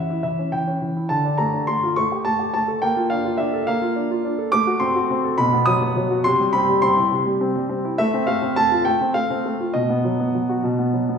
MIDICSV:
0, 0, Header, 1, 2, 480
1, 0, Start_track
1, 0, Tempo, 571973
1, 932, Time_signature, 6, 3, 24, 8
1, 6689, Tempo, 592300
1, 9292, End_track
2, 0, Start_track
2, 0, Title_t, "Grand piano"
2, 0, Program_c, 0, 0
2, 0, Control_c, 0, 64, 127
2, 0, Note_on_c, 0, 52, 34
2, 0, Note_on_c, 0, 61, 39
2, 0, Note_on_c, 0, 76, 64
2, 0, Note_on_c, 0, 78, 74
2, 86, Note_on_c, 0, 64, 39
2, 158, Note_off_c, 0, 52, 0
2, 181, Note_off_c, 0, 76, 0
2, 194, Note_on_c, 0, 76, 63
2, 203, Note_on_c, 0, 52, 43
2, 222, Control_c, 0, 64, 0
2, 230, Note_off_c, 0, 61, 0
2, 232, Note_off_c, 0, 78, 0
2, 281, Note_off_c, 0, 64, 0
2, 327, Note_on_c, 0, 61, 36
2, 434, Note_off_c, 0, 52, 0
2, 438, Note_on_c, 0, 79, 67
2, 443, Note_off_c, 0, 76, 0
2, 447, Note_on_c, 0, 52, 37
2, 521, Note_off_c, 0, 61, 0
2, 565, Note_on_c, 0, 61, 39
2, 641, Note_off_c, 0, 52, 0
2, 686, Note_on_c, 0, 52, 37
2, 760, Note_off_c, 0, 61, 0
2, 813, Note_on_c, 0, 64, 36
2, 881, Note_off_c, 0, 52, 0
2, 915, Note_on_c, 0, 81, 75
2, 926, Note_off_c, 0, 79, 0
2, 926, Note_on_c, 0, 50, 52
2, 933, Note_off_c, 0, 64, 0
2, 1048, Note_on_c, 0, 62, 46
2, 1099, Control_c, 0, 64, 127
2, 1155, Note_on_c, 0, 82, 77
2, 1163, Note_on_c, 0, 57, 41
2, 1166, Note_off_c, 0, 81, 0
2, 1245, Note_off_c, 0, 62, 0
2, 1290, Note_on_c, 0, 62, 43
2, 1362, Note_off_c, 0, 57, 0
2, 1403, Note_on_c, 0, 84, 75
2, 1407, Note_off_c, 0, 82, 0
2, 1413, Note_on_c, 0, 57, 37
2, 1486, Note_off_c, 0, 62, 0
2, 1539, Note_on_c, 0, 65, 44
2, 1608, Note_off_c, 0, 57, 0
2, 1633, Note_off_c, 0, 50, 0
2, 1647, Note_on_c, 0, 85, 88
2, 1651, Note_off_c, 0, 84, 0
2, 1654, Note_on_c, 0, 57, 52
2, 1659, Note_off_c, 0, 65, 0
2, 1666, Control_c, 0, 64, 0
2, 1779, Note_on_c, 0, 67, 43
2, 1814, Control_c, 0, 64, 127
2, 1880, Note_off_c, 0, 57, 0
2, 1885, Note_on_c, 0, 81, 76
2, 1893, Note_on_c, 0, 57, 40
2, 1894, Note_off_c, 0, 85, 0
2, 1972, Note_off_c, 0, 67, 0
2, 2009, Note_on_c, 0, 67, 44
2, 2089, Note_off_c, 0, 57, 0
2, 2116, Note_off_c, 0, 81, 0
2, 2128, Note_on_c, 0, 81, 77
2, 2135, Note_on_c, 0, 57, 39
2, 2207, Note_off_c, 0, 67, 0
2, 2251, Note_on_c, 0, 69, 42
2, 2330, Note_off_c, 0, 57, 0
2, 2364, Note_on_c, 0, 79, 86
2, 2371, Note_on_c, 0, 58, 57
2, 2375, Note_off_c, 0, 81, 0
2, 2376, Note_off_c, 0, 69, 0
2, 2386, Control_c, 0, 64, 0
2, 2490, Note_on_c, 0, 65, 46
2, 2541, Control_c, 0, 64, 127
2, 2600, Note_on_c, 0, 77, 78
2, 2609, Note_on_c, 0, 62, 44
2, 2612, Note_off_c, 0, 79, 0
2, 2687, Note_off_c, 0, 65, 0
2, 2727, Note_on_c, 0, 65, 48
2, 2806, Note_off_c, 0, 62, 0
2, 2832, Note_on_c, 0, 76, 76
2, 2844, Note_on_c, 0, 62, 49
2, 2849, Note_off_c, 0, 77, 0
2, 2924, Note_off_c, 0, 65, 0
2, 2965, Note_on_c, 0, 69, 49
2, 3043, Note_off_c, 0, 62, 0
2, 3074, Note_off_c, 0, 58, 0
2, 3079, Note_on_c, 0, 77, 84
2, 3084, Note_off_c, 0, 76, 0
2, 3086, Note_on_c, 0, 58, 52
2, 3108, Control_c, 0, 64, 0
2, 3163, Note_off_c, 0, 69, 0
2, 3204, Note_on_c, 0, 65, 45
2, 3323, Note_on_c, 0, 62, 48
2, 3403, Note_off_c, 0, 65, 0
2, 3449, Note_on_c, 0, 65, 46
2, 3522, Note_off_c, 0, 62, 0
2, 3563, Note_on_c, 0, 62, 48
2, 3644, Note_off_c, 0, 65, 0
2, 3680, Note_on_c, 0, 69, 47
2, 3760, Note_off_c, 0, 62, 0
2, 3787, Note_off_c, 0, 58, 0
2, 3791, Note_on_c, 0, 86, 106
2, 3800, Note_on_c, 0, 57, 63
2, 3805, Note_off_c, 0, 77, 0
2, 3807, Note_off_c, 0, 69, 0
2, 3919, Note_on_c, 0, 66, 57
2, 3985, Control_c, 0, 64, 127
2, 4025, Note_on_c, 0, 84, 77
2, 4033, Note_on_c, 0, 60, 51
2, 4040, Note_off_c, 0, 86, 0
2, 4116, Note_off_c, 0, 66, 0
2, 4159, Note_on_c, 0, 66, 52
2, 4233, Note_off_c, 0, 60, 0
2, 4284, Note_on_c, 0, 60, 49
2, 4355, Note_off_c, 0, 66, 0
2, 4399, Note_on_c, 0, 69, 52
2, 4478, Note_off_c, 0, 60, 0
2, 4499, Note_off_c, 0, 57, 0
2, 4512, Note_on_c, 0, 83, 95
2, 4515, Note_off_c, 0, 84, 0
2, 4519, Note_on_c, 0, 47, 66
2, 4523, Note_off_c, 0, 69, 0
2, 4539, Control_c, 0, 64, 0
2, 4643, Note_on_c, 0, 59, 52
2, 4682, Control_c, 0, 64, 127
2, 4747, Note_on_c, 0, 87, 96
2, 4757, Note_on_c, 0, 54, 55
2, 4760, Note_off_c, 0, 83, 0
2, 4837, Note_off_c, 0, 59, 0
2, 4881, Note_on_c, 0, 59, 49
2, 4954, Note_off_c, 0, 54, 0
2, 5006, Note_on_c, 0, 54, 50
2, 5077, Note_off_c, 0, 59, 0
2, 5121, Note_on_c, 0, 66, 48
2, 5199, Note_off_c, 0, 54, 0
2, 5222, Note_off_c, 0, 47, 0
2, 5238, Note_off_c, 0, 87, 0
2, 5238, Note_on_c, 0, 84, 102
2, 5245, Note_off_c, 0, 66, 0
2, 5247, Note_on_c, 0, 48, 64
2, 5260, Control_c, 0, 64, 0
2, 5366, Note_on_c, 0, 55, 56
2, 5421, Control_c, 0, 64, 127
2, 5478, Note_on_c, 0, 83, 99
2, 5484, Note_off_c, 0, 84, 0
2, 5486, Note_on_c, 0, 60, 54
2, 5560, Note_off_c, 0, 55, 0
2, 5614, Note_on_c, 0, 55, 58
2, 5679, Note_off_c, 0, 60, 0
2, 5722, Note_on_c, 0, 84, 97
2, 5723, Note_off_c, 0, 83, 0
2, 5729, Note_on_c, 0, 60, 53
2, 5803, Note_off_c, 0, 55, 0
2, 5846, Note_on_c, 0, 64, 52
2, 5921, Note_off_c, 0, 60, 0
2, 5961, Note_off_c, 0, 48, 0
2, 5965, Note_off_c, 0, 84, 0
2, 5974, Note_on_c, 0, 48, 58
2, 5977, Control_c, 0, 64, 0
2, 6039, Note_off_c, 0, 64, 0
2, 6094, Note_on_c, 0, 55, 52
2, 6217, Note_on_c, 0, 60, 48
2, 6283, Note_off_c, 0, 55, 0
2, 6341, Note_on_c, 0, 55, 50
2, 6405, Note_off_c, 0, 60, 0
2, 6456, Note_on_c, 0, 60, 51
2, 6528, Note_off_c, 0, 55, 0
2, 6586, Note_on_c, 0, 64, 48
2, 6646, Note_off_c, 0, 60, 0
2, 6672, Note_off_c, 0, 48, 0
2, 6699, Note_off_c, 0, 64, 0
2, 6699, Note_on_c, 0, 76, 99
2, 6708, Note_on_c, 0, 57, 70
2, 6825, Note_on_c, 0, 60, 51
2, 6847, Control_c, 0, 64, 127
2, 6926, Note_off_c, 0, 57, 0
2, 6930, Note_off_c, 0, 76, 0
2, 6930, Note_on_c, 0, 77, 84
2, 6938, Note_on_c, 0, 57, 55
2, 7005, Note_off_c, 0, 60, 0
2, 7056, Note_on_c, 0, 60, 50
2, 7121, Note_off_c, 0, 57, 0
2, 7163, Note_off_c, 0, 77, 0
2, 7169, Note_on_c, 0, 81, 96
2, 7178, Note_on_c, 0, 57, 45
2, 7238, Note_off_c, 0, 60, 0
2, 7293, Note_on_c, 0, 65, 51
2, 7359, Note_off_c, 0, 57, 0
2, 7400, Note_on_c, 0, 79, 88
2, 7403, Note_off_c, 0, 81, 0
2, 7408, Note_on_c, 0, 57, 55
2, 7410, Control_c, 0, 64, 0
2, 7477, Note_off_c, 0, 65, 0
2, 7529, Note_on_c, 0, 60, 43
2, 7632, Note_off_c, 0, 57, 0
2, 7638, Note_on_c, 0, 77, 84
2, 7639, Note_off_c, 0, 79, 0
2, 7644, Note_on_c, 0, 57, 42
2, 7716, Note_off_c, 0, 60, 0
2, 7769, Note_on_c, 0, 60, 43
2, 7835, Note_off_c, 0, 57, 0
2, 7892, Note_on_c, 0, 57, 45
2, 7958, Note_off_c, 0, 60, 0
2, 8013, Note_on_c, 0, 65, 41
2, 8081, Note_off_c, 0, 57, 0
2, 8119, Note_on_c, 0, 75, 78
2, 8124, Note_off_c, 0, 77, 0
2, 8129, Note_on_c, 0, 47, 57
2, 8130, Note_off_c, 0, 65, 0
2, 8246, Note_on_c, 0, 59, 48
2, 8261, Control_c, 0, 64, 127
2, 8370, Note_on_c, 0, 54, 42
2, 8440, Note_off_c, 0, 59, 0
2, 8493, Note_on_c, 0, 59, 43
2, 8562, Note_off_c, 0, 54, 0
2, 8613, Note_on_c, 0, 54, 40
2, 8683, Note_off_c, 0, 59, 0
2, 8733, Note_on_c, 0, 66, 50
2, 8803, Note_off_c, 0, 54, 0
2, 8837, Note_off_c, 0, 47, 0
2, 8846, Note_off_c, 0, 75, 0
2, 8849, Note_on_c, 0, 47, 54
2, 8860, Control_c, 0, 64, 0
2, 8923, Note_off_c, 0, 66, 0
2, 8971, Note_on_c, 0, 59, 42
2, 9091, Note_on_c, 0, 54, 38
2, 9163, Note_off_c, 0, 59, 0
2, 9216, Note_on_c, 0, 59, 39
2, 9284, Note_off_c, 0, 54, 0
2, 9292, Note_off_c, 0, 47, 0
2, 9292, Note_off_c, 0, 59, 0
2, 9292, End_track
0, 0, End_of_file